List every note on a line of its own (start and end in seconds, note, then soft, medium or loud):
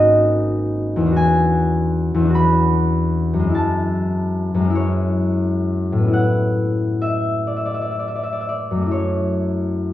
0.00 1.09 G#1 medium
0.00 1.09 A#3 soft
0.00 0.99 C#4 soft
0.00 1.14 D#4 soft
0.00 1.10 F#4 medium
0.00 1.19 G#4 soft
0.00 1.19 A#4 medium
0.00 1.20 D#5 medium
0.96 2.13 E2 medium
1.01 2.18 C#4 medium
1.06 2.23 D4 medium
1.11 2.28 F#4 medium
1.16 5.06 G#5 medium
2.14 3.47 E2 medium
2.19 3.43 C#4 medium
2.24 3.52 D4 soft
2.29 6.19 F#4 medium
2.35 3.57 B5 medium
3.33 4.53 F#2 medium
3.39 4.58 G#3 soft
3.44 4.64 C#4 soft
3.49 4.69 E4 soft
3.55 7.45 A5 loud
4.54 6.07 F#2 medium
4.60 6.10 G#3 soft
4.65 6.02 C#4 soft
4.70 6.07 E4 soft
4.75 8.65 C#5 medium
5.92 8.84 A2 medium
5.98 8.87 B3 soft
6.03 8.80 C#4 soft
6.08 8.85 E4 soft
6.13 9.93 F#5 medium
7.02 7.55 E5 medium
7.47 7.61 D5 medium
7.56 7.70 E5 medium
7.65 7.79 D5 medium
7.74 7.87 E5 medium
7.81 7.95 D5 medium
7.91 8.04 E5 medium
7.99 8.13 D5 medium
8.08 8.21 E5 medium
8.15 8.29 D5 medium
8.23 8.37 E5 medium
8.32 8.46 D5 medium
8.41 8.55 E5 medium
8.49 9.21 D5 medium
8.71 9.93 F#2 soft
8.76 9.93 A3 soft
8.81 9.93 C#4 soft
8.86 9.93 E4 soft
8.91 9.93 C#5 medium